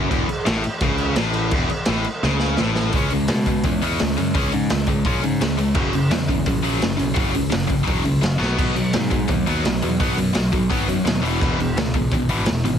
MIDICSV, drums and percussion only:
0, 0, Header, 1, 2, 480
1, 0, Start_track
1, 0, Tempo, 353357
1, 151, Time_signature, 4, 2, 24, 8
1, 17373, End_track
2, 0, Start_track
2, 0, Title_t, "Drums"
2, 149, Note_on_c, 9, 36, 108
2, 155, Note_on_c, 9, 49, 78
2, 285, Note_off_c, 9, 36, 0
2, 290, Note_off_c, 9, 49, 0
2, 392, Note_on_c, 9, 49, 60
2, 528, Note_off_c, 9, 49, 0
2, 626, Note_on_c, 9, 49, 80
2, 636, Note_on_c, 9, 38, 111
2, 762, Note_off_c, 9, 49, 0
2, 771, Note_off_c, 9, 38, 0
2, 864, Note_on_c, 9, 49, 65
2, 1000, Note_off_c, 9, 49, 0
2, 1094, Note_on_c, 9, 49, 84
2, 1099, Note_on_c, 9, 36, 108
2, 1229, Note_off_c, 9, 49, 0
2, 1235, Note_off_c, 9, 36, 0
2, 1331, Note_on_c, 9, 49, 64
2, 1467, Note_off_c, 9, 49, 0
2, 1572, Note_on_c, 9, 49, 84
2, 1581, Note_on_c, 9, 38, 114
2, 1707, Note_off_c, 9, 49, 0
2, 1717, Note_off_c, 9, 38, 0
2, 1813, Note_on_c, 9, 49, 64
2, 1949, Note_off_c, 9, 49, 0
2, 2053, Note_on_c, 9, 49, 86
2, 2062, Note_on_c, 9, 36, 112
2, 2189, Note_off_c, 9, 49, 0
2, 2198, Note_off_c, 9, 36, 0
2, 2303, Note_on_c, 9, 49, 59
2, 2438, Note_off_c, 9, 49, 0
2, 2518, Note_on_c, 9, 49, 86
2, 2527, Note_on_c, 9, 38, 114
2, 2653, Note_off_c, 9, 49, 0
2, 2663, Note_off_c, 9, 38, 0
2, 2776, Note_on_c, 9, 49, 62
2, 2912, Note_off_c, 9, 49, 0
2, 3032, Note_on_c, 9, 38, 67
2, 3168, Note_off_c, 9, 38, 0
2, 3254, Note_on_c, 9, 38, 63
2, 3389, Note_off_c, 9, 38, 0
2, 3495, Note_on_c, 9, 38, 91
2, 3631, Note_off_c, 9, 38, 0
2, 3742, Note_on_c, 9, 38, 86
2, 3878, Note_off_c, 9, 38, 0
2, 3975, Note_on_c, 9, 46, 80
2, 3987, Note_on_c, 9, 36, 113
2, 4110, Note_off_c, 9, 46, 0
2, 4123, Note_off_c, 9, 36, 0
2, 4213, Note_on_c, 9, 46, 53
2, 4349, Note_off_c, 9, 46, 0
2, 4452, Note_on_c, 9, 46, 73
2, 4462, Note_on_c, 9, 38, 114
2, 4588, Note_off_c, 9, 46, 0
2, 4597, Note_off_c, 9, 38, 0
2, 4698, Note_on_c, 9, 46, 61
2, 4703, Note_on_c, 9, 36, 84
2, 4834, Note_off_c, 9, 46, 0
2, 4838, Note_off_c, 9, 36, 0
2, 4938, Note_on_c, 9, 46, 86
2, 4945, Note_on_c, 9, 36, 103
2, 5074, Note_off_c, 9, 46, 0
2, 5081, Note_off_c, 9, 36, 0
2, 5189, Note_on_c, 9, 46, 62
2, 5325, Note_off_c, 9, 46, 0
2, 5425, Note_on_c, 9, 46, 79
2, 5434, Note_on_c, 9, 38, 108
2, 5560, Note_off_c, 9, 46, 0
2, 5570, Note_off_c, 9, 38, 0
2, 5671, Note_on_c, 9, 46, 60
2, 5807, Note_off_c, 9, 46, 0
2, 5906, Note_on_c, 9, 36, 117
2, 5909, Note_on_c, 9, 46, 85
2, 6042, Note_off_c, 9, 36, 0
2, 6045, Note_off_c, 9, 46, 0
2, 6142, Note_on_c, 9, 46, 54
2, 6277, Note_off_c, 9, 46, 0
2, 6381, Note_on_c, 9, 46, 81
2, 6391, Note_on_c, 9, 38, 103
2, 6517, Note_off_c, 9, 46, 0
2, 6526, Note_off_c, 9, 38, 0
2, 6610, Note_on_c, 9, 46, 61
2, 6617, Note_on_c, 9, 36, 90
2, 6746, Note_off_c, 9, 46, 0
2, 6752, Note_off_c, 9, 36, 0
2, 6858, Note_on_c, 9, 36, 112
2, 6858, Note_on_c, 9, 46, 75
2, 6994, Note_off_c, 9, 36, 0
2, 6994, Note_off_c, 9, 46, 0
2, 7111, Note_on_c, 9, 46, 53
2, 7247, Note_off_c, 9, 46, 0
2, 7350, Note_on_c, 9, 46, 68
2, 7360, Note_on_c, 9, 38, 104
2, 7486, Note_off_c, 9, 46, 0
2, 7496, Note_off_c, 9, 38, 0
2, 7584, Note_on_c, 9, 46, 53
2, 7720, Note_off_c, 9, 46, 0
2, 7806, Note_on_c, 9, 49, 96
2, 7815, Note_on_c, 9, 36, 111
2, 7942, Note_off_c, 9, 49, 0
2, 7951, Note_off_c, 9, 36, 0
2, 8055, Note_on_c, 9, 46, 54
2, 8191, Note_off_c, 9, 46, 0
2, 8298, Note_on_c, 9, 46, 76
2, 8307, Note_on_c, 9, 38, 110
2, 8433, Note_off_c, 9, 46, 0
2, 8443, Note_off_c, 9, 38, 0
2, 8541, Note_on_c, 9, 36, 82
2, 8558, Note_on_c, 9, 46, 58
2, 8677, Note_off_c, 9, 36, 0
2, 8694, Note_off_c, 9, 46, 0
2, 8775, Note_on_c, 9, 46, 78
2, 8779, Note_on_c, 9, 36, 105
2, 8911, Note_off_c, 9, 46, 0
2, 8914, Note_off_c, 9, 36, 0
2, 9025, Note_on_c, 9, 46, 60
2, 9161, Note_off_c, 9, 46, 0
2, 9261, Note_on_c, 9, 46, 77
2, 9271, Note_on_c, 9, 38, 106
2, 9397, Note_off_c, 9, 46, 0
2, 9406, Note_off_c, 9, 38, 0
2, 9498, Note_on_c, 9, 46, 58
2, 9634, Note_off_c, 9, 46, 0
2, 9725, Note_on_c, 9, 46, 83
2, 9734, Note_on_c, 9, 36, 118
2, 9860, Note_off_c, 9, 46, 0
2, 9870, Note_off_c, 9, 36, 0
2, 9977, Note_on_c, 9, 46, 58
2, 10113, Note_off_c, 9, 46, 0
2, 10210, Note_on_c, 9, 46, 80
2, 10220, Note_on_c, 9, 38, 112
2, 10346, Note_off_c, 9, 46, 0
2, 10355, Note_off_c, 9, 38, 0
2, 10456, Note_on_c, 9, 36, 87
2, 10458, Note_on_c, 9, 46, 61
2, 10592, Note_off_c, 9, 36, 0
2, 10594, Note_off_c, 9, 46, 0
2, 10696, Note_on_c, 9, 46, 78
2, 10698, Note_on_c, 9, 36, 106
2, 10832, Note_off_c, 9, 46, 0
2, 10834, Note_off_c, 9, 36, 0
2, 10937, Note_on_c, 9, 46, 52
2, 11073, Note_off_c, 9, 46, 0
2, 11181, Note_on_c, 9, 46, 72
2, 11190, Note_on_c, 9, 38, 114
2, 11316, Note_off_c, 9, 46, 0
2, 11326, Note_off_c, 9, 38, 0
2, 11439, Note_on_c, 9, 38, 61
2, 11575, Note_off_c, 9, 38, 0
2, 11663, Note_on_c, 9, 36, 110
2, 11666, Note_on_c, 9, 57, 93
2, 11799, Note_off_c, 9, 36, 0
2, 11802, Note_off_c, 9, 57, 0
2, 11901, Note_on_c, 9, 46, 53
2, 12036, Note_off_c, 9, 46, 0
2, 12132, Note_on_c, 9, 46, 77
2, 12142, Note_on_c, 9, 38, 109
2, 12268, Note_off_c, 9, 46, 0
2, 12277, Note_off_c, 9, 38, 0
2, 12372, Note_on_c, 9, 46, 57
2, 12381, Note_on_c, 9, 36, 84
2, 12508, Note_off_c, 9, 46, 0
2, 12517, Note_off_c, 9, 36, 0
2, 12606, Note_on_c, 9, 46, 73
2, 12620, Note_on_c, 9, 36, 106
2, 12742, Note_off_c, 9, 46, 0
2, 12756, Note_off_c, 9, 36, 0
2, 12862, Note_on_c, 9, 46, 53
2, 12998, Note_off_c, 9, 46, 0
2, 13109, Note_on_c, 9, 46, 77
2, 13119, Note_on_c, 9, 38, 105
2, 13245, Note_off_c, 9, 46, 0
2, 13255, Note_off_c, 9, 38, 0
2, 13344, Note_on_c, 9, 46, 60
2, 13480, Note_off_c, 9, 46, 0
2, 13585, Note_on_c, 9, 36, 109
2, 13590, Note_on_c, 9, 46, 84
2, 13721, Note_off_c, 9, 36, 0
2, 13726, Note_off_c, 9, 46, 0
2, 13828, Note_on_c, 9, 46, 58
2, 13964, Note_off_c, 9, 46, 0
2, 14054, Note_on_c, 9, 46, 85
2, 14063, Note_on_c, 9, 38, 110
2, 14190, Note_off_c, 9, 46, 0
2, 14199, Note_off_c, 9, 38, 0
2, 14301, Note_on_c, 9, 36, 90
2, 14303, Note_on_c, 9, 46, 66
2, 14437, Note_off_c, 9, 36, 0
2, 14439, Note_off_c, 9, 46, 0
2, 14543, Note_on_c, 9, 36, 105
2, 14554, Note_on_c, 9, 46, 81
2, 14679, Note_off_c, 9, 36, 0
2, 14690, Note_off_c, 9, 46, 0
2, 14792, Note_on_c, 9, 46, 58
2, 14928, Note_off_c, 9, 46, 0
2, 15035, Note_on_c, 9, 46, 79
2, 15044, Note_on_c, 9, 38, 113
2, 15171, Note_off_c, 9, 46, 0
2, 15180, Note_off_c, 9, 38, 0
2, 15283, Note_on_c, 9, 46, 58
2, 15419, Note_off_c, 9, 46, 0
2, 15506, Note_on_c, 9, 36, 114
2, 15519, Note_on_c, 9, 49, 97
2, 15642, Note_off_c, 9, 36, 0
2, 15654, Note_off_c, 9, 49, 0
2, 15759, Note_on_c, 9, 46, 57
2, 15895, Note_off_c, 9, 46, 0
2, 15991, Note_on_c, 9, 46, 74
2, 16001, Note_on_c, 9, 38, 110
2, 16127, Note_off_c, 9, 46, 0
2, 16137, Note_off_c, 9, 38, 0
2, 16215, Note_on_c, 9, 46, 59
2, 16220, Note_on_c, 9, 36, 90
2, 16351, Note_off_c, 9, 46, 0
2, 16356, Note_off_c, 9, 36, 0
2, 16458, Note_on_c, 9, 46, 73
2, 16459, Note_on_c, 9, 36, 113
2, 16594, Note_off_c, 9, 36, 0
2, 16594, Note_off_c, 9, 46, 0
2, 16694, Note_on_c, 9, 46, 55
2, 16829, Note_off_c, 9, 46, 0
2, 16922, Note_on_c, 9, 46, 77
2, 16931, Note_on_c, 9, 38, 112
2, 17058, Note_off_c, 9, 46, 0
2, 17067, Note_off_c, 9, 38, 0
2, 17188, Note_on_c, 9, 46, 58
2, 17324, Note_off_c, 9, 46, 0
2, 17373, End_track
0, 0, End_of_file